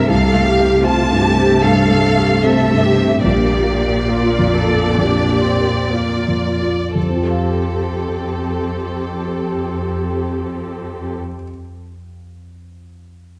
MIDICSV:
0, 0, Header, 1, 5, 480
1, 0, Start_track
1, 0, Key_signature, -1, "major"
1, 0, Tempo, 747198
1, 57, Time_signature, 4, 2, 24, 8
1, 538, Tempo, 800000
1, 1978, Tempo, 859599
1, 2938, Tempo, 963082
1, 3418, Tempo, 1036269
1, 3898, Tempo, 991736
1, 4858, Tempo, 974026
1, 7054, End_track
2, 0, Start_track
2, 0, Title_t, "Violin section"
2, 0, Program_c, 0, 48
2, 63, Note_on_c, 0, 77, 69
2, 532, Note_off_c, 0, 77, 0
2, 550, Note_on_c, 0, 81, 73
2, 1006, Note_off_c, 0, 81, 0
2, 1013, Note_on_c, 0, 77, 68
2, 1495, Note_off_c, 0, 77, 0
2, 1498, Note_on_c, 0, 76, 67
2, 1980, Note_off_c, 0, 76, 0
2, 1985, Note_on_c, 0, 74, 61
2, 3882, Note_off_c, 0, 74, 0
2, 3903, Note_on_c, 0, 69, 41
2, 5947, Note_off_c, 0, 69, 0
2, 7054, End_track
3, 0, Start_track
3, 0, Title_t, "Viola section"
3, 0, Program_c, 1, 48
3, 50, Note_on_c, 1, 69, 42
3, 54, Note_on_c, 1, 57, 44
3, 291, Note_off_c, 1, 69, 0
3, 292, Note_on_c, 1, 67, 53
3, 529, Note_off_c, 1, 57, 0
3, 534, Note_on_c, 1, 65, 53
3, 536, Note_off_c, 1, 67, 0
3, 536, Note_on_c, 1, 57, 51
3, 767, Note_on_c, 1, 67, 53
3, 770, Note_off_c, 1, 65, 0
3, 1007, Note_off_c, 1, 67, 0
3, 1018, Note_on_c, 1, 69, 45
3, 1483, Note_off_c, 1, 69, 0
3, 1490, Note_on_c, 1, 69, 40
3, 1729, Note_off_c, 1, 69, 0
3, 1731, Note_on_c, 1, 67, 46
3, 1953, Note_off_c, 1, 57, 0
3, 1975, Note_off_c, 1, 67, 0
3, 1980, Note_on_c, 1, 58, 38
3, 1982, Note_on_c, 1, 67, 38
3, 2436, Note_off_c, 1, 58, 0
3, 2437, Note_off_c, 1, 67, 0
3, 2454, Note_on_c, 1, 58, 40
3, 2454, Note_on_c, 1, 65, 41
3, 2691, Note_off_c, 1, 65, 0
3, 2691, Note_on_c, 1, 69, 43
3, 2933, Note_off_c, 1, 58, 0
3, 2940, Note_off_c, 1, 69, 0
3, 2942, Note_on_c, 1, 62, 34
3, 2945, Note_on_c, 1, 67, 33
3, 3173, Note_on_c, 1, 60, 31
3, 3174, Note_off_c, 1, 62, 0
3, 3418, Note_off_c, 1, 60, 0
3, 3421, Note_off_c, 1, 67, 0
3, 3423, Note_on_c, 1, 58, 27
3, 3425, Note_on_c, 1, 65, 24
3, 3772, Note_off_c, 1, 65, 0
3, 3778, Note_off_c, 1, 58, 0
3, 3897, Note_on_c, 1, 60, 29
3, 3897, Note_on_c, 1, 67, 26
3, 5940, Note_off_c, 1, 67, 0
3, 5941, Note_off_c, 1, 60, 0
3, 7054, End_track
4, 0, Start_track
4, 0, Title_t, "Grand piano"
4, 0, Program_c, 2, 0
4, 0, Control_c, 2, 64, 127
4, 0, Note_on_c, 2, 43, 28
4, 0, Note_on_c, 2, 57, 31
4, 0, Note_on_c, 2, 60, 34
4, 0, Note_on_c, 2, 67, 38
4, 59, Note_on_c, 2, 36, 44
4, 67, Control_c, 2, 64, 0
4, 69, Note_off_c, 2, 67, 0
4, 71, Note_off_c, 2, 57, 0
4, 71, Note_off_c, 2, 60, 0
4, 75, Note_off_c, 2, 43, 0
4, 185, Control_c, 2, 64, 127
4, 219, Note_on_c, 2, 57, 35
4, 384, Note_on_c, 2, 67, 39
4, 475, Note_off_c, 2, 57, 0
4, 540, Note_on_c, 2, 60, 40
4, 635, Note_off_c, 2, 67, 0
4, 706, Note_on_c, 2, 43, 31
4, 788, Note_off_c, 2, 60, 0
4, 855, Note_on_c, 2, 60, 39
4, 952, Note_off_c, 2, 43, 0
4, 986, Note_off_c, 2, 36, 0
4, 1018, Note_on_c, 2, 43, 33
4, 1108, Note_off_c, 2, 60, 0
4, 1182, Note_on_c, 2, 57, 35
4, 1271, Note_off_c, 2, 43, 0
4, 1348, Note_on_c, 2, 67, 38
4, 1435, Note_off_c, 2, 57, 0
4, 1500, Note_on_c, 2, 60, 34
4, 1598, Note_off_c, 2, 67, 0
4, 1669, Note_on_c, 2, 43, 28
4, 1754, Note_off_c, 2, 60, 0
4, 1826, Note_on_c, 2, 60, 34
4, 1920, Note_off_c, 2, 43, 0
4, 1980, Note_on_c, 2, 34, 42
4, 1982, Note_off_c, 2, 60, 0
4, 1990, Control_c, 2, 64, 0
4, 2083, Control_c, 2, 64, 127
4, 2144, Note_on_c, 2, 58, 31
4, 2300, Note_on_c, 2, 70, 31
4, 2387, Note_off_c, 2, 58, 0
4, 2460, Note_on_c, 2, 65, 34
4, 2547, Note_off_c, 2, 70, 0
4, 2621, Note_on_c, 2, 41, 29
4, 2711, Note_off_c, 2, 65, 0
4, 2785, Note_on_c, 2, 65, 31
4, 2878, Note_off_c, 2, 41, 0
4, 2917, Note_off_c, 2, 34, 0
4, 2950, Note_on_c, 2, 41, 28
4, 3037, Note_off_c, 2, 65, 0
4, 3106, Note_on_c, 2, 58, 22
4, 3194, Note_off_c, 2, 41, 0
4, 3258, Note_on_c, 2, 70, 26
4, 3358, Note_off_c, 2, 58, 0
4, 3428, Note_on_c, 2, 65, 24
4, 3515, Note_off_c, 2, 70, 0
4, 3586, Note_on_c, 2, 41, 19
4, 3681, Note_off_c, 2, 65, 0
4, 3742, Note_on_c, 2, 65, 22
4, 3841, Note_off_c, 2, 41, 0
4, 3898, Note_off_c, 2, 65, 0
4, 3898, Note_on_c, 2, 41, 25
4, 3910, Control_c, 2, 64, 0
4, 3930, Note_on_c, 2, 53, 26
4, 3964, Note_on_c, 2, 60, 28
4, 3998, Note_on_c, 2, 65, 27
4, 4020, Control_c, 2, 64, 127
4, 4033, Note_on_c, 2, 67, 27
4, 4067, Note_on_c, 2, 77, 30
4, 5941, Note_off_c, 2, 41, 0
4, 5974, Note_off_c, 2, 53, 0
4, 6008, Note_off_c, 2, 60, 0
4, 6043, Note_off_c, 2, 65, 0
4, 6079, Note_off_c, 2, 67, 0
4, 6114, Note_off_c, 2, 77, 0
4, 7054, End_track
5, 0, Start_track
5, 0, Title_t, "Cello section"
5, 0, Program_c, 3, 48
5, 0, Note_on_c, 3, 48, 48
5, 1958, Note_off_c, 3, 48, 0
5, 1982, Note_on_c, 3, 46, 47
5, 3777, Note_off_c, 3, 46, 0
5, 3905, Note_on_c, 3, 41, 32
5, 5949, Note_off_c, 3, 41, 0
5, 7054, End_track
0, 0, End_of_file